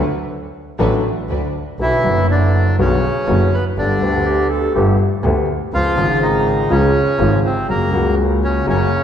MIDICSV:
0, 0, Header, 1, 6, 480
1, 0, Start_track
1, 0, Key_signature, 2, "minor"
1, 0, Tempo, 492611
1, 1747, Time_signature, 4, 2, 24, 8
1, 8804, End_track
2, 0, Start_track
2, 0, Title_t, "Clarinet"
2, 0, Program_c, 0, 71
2, 4143, Note_on_c, 0, 67, 83
2, 4385, Note_on_c, 0, 69, 92
2, 4399, Note_off_c, 0, 67, 0
2, 4618, Note_off_c, 0, 69, 0
2, 4624, Note_on_c, 0, 67, 74
2, 4855, Note_off_c, 0, 67, 0
2, 8804, End_track
3, 0, Start_track
3, 0, Title_t, "String section"
3, 0, Program_c, 1, 48
3, 772, Note_on_c, 1, 62, 72
3, 775, Note_on_c, 1, 66, 66
3, 775, Note_on_c, 1, 71, 78
3, 975, Note_off_c, 1, 62, 0
3, 977, Note_off_c, 1, 66, 0
3, 977, Note_off_c, 1, 71, 0
3, 1262, Note_on_c, 1, 62, 51
3, 1262, Note_on_c, 1, 66, 41
3, 1264, Note_on_c, 1, 71, 52
3, 1467, Note_off_c, 1, 62, 0
3, 1467, Note_off_c, 1, 66, 0
3, 1468, Note_off_c, 1, 71, 0
3, 8804, End_track
4, 0, Start_track
4, 0, Title_t, "Bandoneon"
4, 0, Program_c, 2, 23
4, 1763, Note_on_c, 2, 52, 78
4, 1775, Note_on_c, 2, 64, 99
4, 2205, Note_off_c, 2, 52, 0
4, 2211, Note_off_c, 2, 64, 0
4, 2249, Note_on_c, 2, 50, 63
4, 2249, Note_on_c, 2, 62, 76
4, 2690, Note_off_c, 2, 50, 0
4, 2690, Note_off_c, 2, 62, 0
4, 2732, Note_on_c, 2, 49, 62
4, 2733, Note_on_c, 2, 61, 86
4, 3405, Note_off_c, 2, 49, 0
4, 3446, Note_on_c, 2, 59, 67
4, 3447, Note_on_c, 2, 71, 54
4, 3466, Note_off_c, 2, 61, 0
4, 3552, Note_off_c, 2, 59, 0
4, 3552, Note_off_c, 2, 71, 0
4, 3686, Note_on_c, 2, 62, 84
4, 3688, Note_on_c, 2, 50, 64
4, 4360, Note_off_c, 2, 62, 0
4, 4361, Note_off_c, 2, 50, 0
4, 5595, Note_on_c, 2, 65, 110
4, 5603, Note_on_c, 2, 53, 84
4, 6035, Note_off_c, 2, 53, 0
4, 6065, Note_on_c, 2, 63, 84
4, 6077, Note_on_c, 2, 51, 73
4, 6078, Note_off_c, 2, 65, 0
4, 6509, Note_off_c, 2, 51, 0
4, 6535, Note_on_c, 2, 61, 87
4, 6544, Note_on_c, 2, 49, 68
4, 6550, Note_off_c, 2, 63, 0
4, 7209, Note_off_c, 2, 61, 0
4, 7213, Note_off_c, 2, 49, 0
4, 7261, Note_on_c, 2, 60, 76
4, 7264, Note_on_c, 2, 48, 62
4, 7476, Note_off_c, 2, 60, 0
4, 7478, Note_off_c, 2, 48, 0
4, 7502, Note_on_c, 2, 58, 79
4, 7504, Note_on_c, 2, 70, 56
4, 7940, Note_off_c, 2, 58, 0
4, 7941, Note_off_c, 2, 70, 0
4, 8225, Note_on_c, 2, 61, 85
4, 8233, Note_on_c, 2, 49, 70
4, 8441, Note_off_c, 2, 61, 0
4, 8446, Note_off_c, 2, 49, 0
4, 8468, Note_on_c, 2, 61, 94
4, 8476, Note_on_c, 2, 49, 74
4, 8804, Note_off_c, 2, 49, 0
4, 8804, Note_off_c, 2, 61, 0
4, 8804, End_track
5, 0, Start_track
5, 0, Title_t, "Grand piano"
5, 0, Program_c, 3, 0
5, 767, Note_on_c, 3, 54, 72
5, 771, Note_on_c, 3, 59, 63
5, 775, Note_on_c, 3, 33, 80
5, 775, Note_on_c, 3, 45, 83
5, 775, Note_on_c, 3, 69, 80
5, 777, Note_on_c, 3, 62, 62
5, 973, Note_off_c, 3, 54, 0
5, 975, Note_off_c, 3, 59, 0
5, 977, Note_off_c, 3, 33, 0
5, 977, Note_off_c, 3, 45, 0
5, 977, Note_off_c, 3, 69, 0
5, 978, Note_off_c, 3, 62, 0
5, 1265, Note_on_c, 3, 38, 52
5, 1267, Note_on_c, 3, 50, 48
5, 1468, Note_off_c, 3, 38, 0
5, 1469, Note_off_c, 3, 50, 0
5, 1747, Note_on_c, 3, 54, 34
5, 1749, Note_on_c, 3, 50, 41
5, 1750, Note_on_c, 3, 47, 47
5, 1750, Note_on_c, 3, 59, 37
5, 1752, Note_on_c, 3, 66, 41
5, 1755, Note_on_c, 3, 35, 44
5, 1949, Note_off_c, 3, 54, 0
5, 1951, Note_off_c, 3, 47, 0
5, 1951, Note_off_c, 3, 50, 0
5, 1951, Note_off_c, 3, 59, 0
5, 1952, Note_off_c, 3, 66, 0
5, 1954, Note_off_c, 3, 35, 0
5, 1968, Note_on_c, 3, 50, 53
5, 1982, Note_on_c, 3, 54, 53
5, 1990, Note_on_c, 3, 42, 70
5, 1991, Note_on_c, 3, 30, 68
5, 1997, Note_on_c, 3, 59, 56
5, 2007, Note_on_c, 3, 66, 65
5, 2667, Note_off_c, 3, 50, 0
5, 2674, Note_off_c, 3, 54, 0
5, 2678, Note_off_c, 3, 42, 0
5, 2679, Note_off_c, 3, 30, 0
5, 2682, Note_off_c, 3, 59, 0
5, 2687, Note_off_c, 3, 66, 0
5, 2713, Note_on_c, 3, 54, 59
5, 2716, Note_on_c, 3, 50, 65
5, 2716, Note_on_c, 3, 59, 63
5, 2717, Note_on_c, 3, 35, 76
5, 2721, Note_on_c, 3, 66, 71
5, 2722, Note_on_c, 3, 47, 69
5, 2916, Note_off_c, 3, 54, 0
5, 2918, Note_off_c, 3, 35, 0
5, 2918, Note_off_c, 3, 50, 0
5, 2918, Note_off_c, 3, 59, 0
5, 2920, Note_off_c, 3, 66, 0
5, 2921, Note_off_c, 3, 47, 0
5, 3185, Note_on_c, 3, 59, 54
5, 3186, Note_on_c, 3, 42, 74
5, 3186, Note_on_c, 3, 50, 61
5, 3187, Note_on_c, 3, 54, 54
5, 3190, Note_on_c, 3, 30, 70
5, 3192, Note_on_c, 3, 66, 67
5, 3391, Note_off_c, 3, 50, 0
5, 3391, Note_off_c, 3, 59, 0
5, 3392, Note_off_c, 3, 42, 0
5, 3392, Note_off_c, 3, 54, 0
5, 3394, Note_off_c, 3, 30, 0
5, 3395, Note_off_c, 3, 66, 0
5, 3674, Note_on_c, 3, 43, 49
5, 3674, Note_on_c, 3, 50, 44
5, 3674, Note_on_c, 3, 57, 42
5, 3676, Note_on_c, 3, 59, 36
5, 3679, Note_on_c, 3, 31, 49
5, 3680, Note_on_c, 3, 67, 50
5, 3876, Note_off_c, 3, 50, 0
5, 3876, Note_off_c, 3, 57, 0
5, 3877, Note_off_c, 3, 43, 0
5, 3877, Note_off_c, 3, 59, 0
5, 3879, Note_off_c, 3, 31, 0
5, 3880, Note_off_c, 3, 67, 0
5, 3899, Note_on_c, 3, 50, 69
5, 3914, Note_on_c, 3, 57, 60
5, 3918, Note_on_c, 3, 38, 68
5, 3924, Note_on_c, 3, 59, 56
5, 3936, Note_on_c, 3, 67, 70
5, 4595, Note_off_c, 3, 57, 0
5, 4596, Note_off_c, 3, 50, 0
5, 4597, Note_off_c, 3, 38, 0
5, 4599, Note_off_c, 3, 59, 0
5, 4605, Note_off_c, 3, 67, 0
5, 4632, Note_on_c, 3, 50, 63
5, 4632, Note_on_c, 3, 57, 62
5, 4635, Note_on_c, 3, 43, 74
5, 4636, Note_on_c, 3, 31, 81
5, 4637, Note_on_c, 3, 67, 67
5, 4639, Note_on_c, 3, 59, 59
5, 4830, Note_off_c, 3, 50, 0
5, 4831, Note_off_c, 3, 57, 0
5, 4832, Note_off_c, 3, 31, 0
5, 4832, Note_off_c, 3, 43, 0
5, 4833, Note_off_c, 3, 67, 0
5, 4834, Note_off_c, 3, 59, 0
5, 5105, Note_on_c, 3, 50, 79
5, 5106, Note_on_c, 3, 38, 75
5, 5107, Note_on_c, 3, 57, 60
5, 5110, Note_on_c, 3, 59, 63
5, 5110, Note_on_c, 3, 67, 70
5, 5306, Note_off_c, 3, 38, 0
5, 5306, Note_off_c, 3, 50, 0
5, 5306, Note_off_c, 3, 57, 0
5, 5308, Note_off_c, 3, 59, 0
5, 5308, Note_off_c, 3, 67, 0
5, 5584, Note_on_c, 3, 37, 52
5, 5584, Note_on_c, 3, 49, 54
5, 5586, Note_on_c, 3, 56, 40
5, 5588, Note_on_c, 3, 53, 39
5, 5591, Note_on_c, 3, 65, 49
5, 5784, Note_off_c, 3, 37, 0
5, 5784, Note_off_c, 3, 49, 0
5, 5785, Note_off_c, 3, 53, 0
5, 5785, Note_off_c, 3, 56, 0
5, 5787, Note_off_c, 3, 65, 0
5, 5802, Note_on_c, 3, 49, 65
5, 5817, Note_on_c, 3, 53, 57
5, 5822, Note_on_c, 3, 44, 76
5, 5826, Note_on_c, 3, 32, 78
5, 5828, Note_on_c, 3, 56, 58
5, 5844, Note_on_c, 3, 65, 72
5, 6487, Note_off_c, 3, 49, 0
5, 6495, Note_off_c, 3, 53, 0
5, 6497, Note_off_c, 3, 44, 0
5, 6499, Note_off_c, 3, 32, 0
5, 6500, Note_off_c, 3, 56, 0
5, 6509, Note_off_c, 3, 65, 0
5, 6528, Note_on_c, 3, 49, 84
5, 6530, Note_on_c, 3, 37, 77
5, 6531, Note_on_c, 3, 53, 67
5, 6531, Note_on_c, 3, 56, 66
5, 6532, Note_on_c, 3, 65, 80
5, 6731, Note_off_c, 3, 37, 0
5, 6732, Note_off_c, 3, 49, 0
5, 6732, Note_off_c, 3, 53, 0
5, 6732, Note_off_c, 3, 56, 0
5, 6733, Note_off_c, 3, 65, 0
5, 7004, Note_on_c, 3, 49, 66
5, 7006, Note_on_c, 3, 56, 58
5, 7007, Note_on_c, 3, 44, 75
5, 7007, Note_on_c, 3, 53, 62
5, 7008, Note_on_c, 3, 32, 80
5, 7012, Note_on_c, 3, 65, 70
5, 7206, Note_off_c, 3, 49, 0
5, 7207, Note_off_c, 3, 44, 0
5, 7207, Note_off_c, 3, 53, 0
5, 7207, Note_off_c, 3, 56, 0
5, 7208, Note_off_c, 3, 32, 0
5, 7210, Note_off_c, 3, 65, 0
5, 7485, Note_on_c, 3, 49, 42
5, 7486, Note_on_c, 3, 54, 53
5, 7489, Note_on_c, 3, 58, 42
5, 7490, Note_on_c, 3, 42, 51
5, 7491, Note_on_c, 3, 66, 49
5, 7686, Note_off_c, 3, 49, 0
5, 7688, Note_off_c, 3, 58, 0
5, 7689, Note_off_c, 3, 42, 0
5, 7689, Note_off_c, 3, 54, 0
5, 7689, Note_off_c, 3, 66, 0
5, 7705, Note_on_c, 3, 49, 70
5, 7715, Note_on_c, 3, 54, 53
5, 7726, Note_on_c, 3, 37, 71
5, 7734, Note_on_c, 3, 58, 54
5, 7741, Note_on_c, 3, 66, 68
5, 8407, Note_off_c, 3, 54, 0
5, 8410, Note_off_c, 3, 49, 0
5, 8412, Note_off_c, 3, 37, 0
5, 8416, Note_off_c, 3, 58, 0
5, 8419, Note_off_c, 3, 66, 0
5, 8445, Note_on_c, 3, 49, 64
5, 8448, Note_on_c, 3, 54, 77
5, 8451, Note_on_c, 3, 58, 61
5, 8452, Note_on_c, 3, 42, 73
5, 8455, Note_on_c, 3, 66, 72
5, 8650, Note_off_c, 3, 49, 0
5, 8652, Note_off_c, 3, 54, 0
5, 8653, Note_off_c, 3, 58, 0
5, 8654, Note_off_c, 3, 42, 0
5, 8655, Note_off_c, 3, 66, 0
5, 8804, End_track
6, 0, Start_track
6, 0, Title_t, "Double bass"
6, 0, Program_c, 4, 43
6, 773, Note_on_c, 4, 33, 87
6, 976, Note_off_c, 4, 33, 0
6, 1257, Note_on_c, 4, 38, 59
6, 1464, Note_off_c, 4, 38, 0
6, 1739, Note_on_c, 4, 35, 57
6, 1946, Note_off_c, 4, 35, 0
6, 1981, Note_on_c, 4, 30, 80
6, 2674, Note_off_c, 4, 30, 0
6, 2703, Note_on_c, 4, 35, 83
6, 2911, Note_off_c, 4, 35, 0
6, 3191, Note_on_c, 4, 30, 91
6, 3394, Note_off_c, 4, 30, 0
6, 3673, Note_on_c, 4, 31, 56
6, 3876, Note_off_c, 4, 31, 0
6, 3910, Note_on_c, 4, 38, 78
6, 4593, Note_off_c, 4, 38, 0
6, 4627, Note_on_c, 4, 31, 86
6, 4828, Note_off_c, 4, 31, 0
6, 5101, Note_on_c, 4, 38, 90
6, 5303, Note_off_c, 4, 38, 0
6, 5579, Note_on_c, 4, 37, 61
6, 5781, Note_off_c, 4, 37, 0
6, 5813, Note_on_c, 4, 32, 82
6, 6493, Note_off_c, 4, 32, 0
6, 6530, Note_on_c, 4, 37, 89
6, 6732, Note_off_c, 4, 37, 0
6, 7005, Note_on_c, 4, 32, 94
6, 7206, Note_off_c, 4, 32, 0
6, 7492, Note_on_c, 4, 30, 59
6, 7690, Note_off_c, 4, 30, 0
6, 7727, Note_on_c, 4, 37, 82
6, 8412, Note_off_c, 4, 37, 0
6, 8447, Note_on_c, 4, 30, 87
6, 8651, Note_off_c, 4, 30, 0
6, 8804, End_track
0, 0, End_of_file